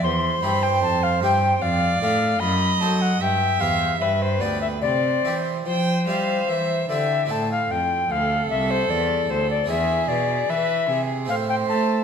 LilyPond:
<<
  \new Staff \with { instrumentName = "Recorder" } { \time 3/4 \key c \major \tempo 4 = 75 c'''8 b''16 g''16 a''16 f''16 g''8 f''8 f''8 | b''8 a''16 fis''16 g''8 f''8 e''16 c''16 d''16 e''16 | d''8. r16 c''4. e''8 | \key a \minor a''16 f''16 g''8 f''8 e''16 c''16 d''8 c''16 d''16 |
e''8 d''8 e''4 f''16 g''16 a''8 | }
  \new Staff \with { instrumentName = "Violin" } { \time 3/4 \key c \major c''2 d''4 | dis''4 e''4 b'4 | c''4 g''8 f''8 e''8 d''8 | \key a \minor r4 a'2 |
gis'4 b'8 gis'8 c''4 | }
  \new Staff \with { instrumentName = "Harpsichord" } { \time 3/4 \key c \major r8 <c' e' g'>4 <c' e' g'>8 r8 <a d' a'>8 | r8 <a dis' c''>8 r8 <c' e' g'>8 r8 <b f' g'>8 | r8 <c' e' g'>4 <c' e' g'>4 <c' e' g'>8 | \key a \minor <c' e' a'>2. |
<d' e' gis'>2 <c' e' a'>4 | }
  \new Staff \with { instrumentName = "Harpsichord" } { \clef bass \time 3/4 \key c \major e,8 g,8 f,8 g,8 f,8 a,8 | fis,8 fis8 g,8 e,8 g,8 d,8 | c8 e8 f8 g8 e8 d8 | \key a \minor a,8 f,8 d,8 c,8 e,8 d,8 |
e,8 b,8 e8 c8 a,8 a8 | }
  \new Staff \with { instrumentName = "Cello" } { \clef bass \time 3/4 \key c \major e,8 g,8 f,8 g,8 f,8 a,8 | fis,8 fis8 g,8 e,8 g,8 d,8 | c8 e8 f8 g8 e8 d8 | \key a \minor a,8 f,8 d,8 c,8 e,8 d,8 |
e,8 b,8 e8 c8 a,8 a8 | }
>>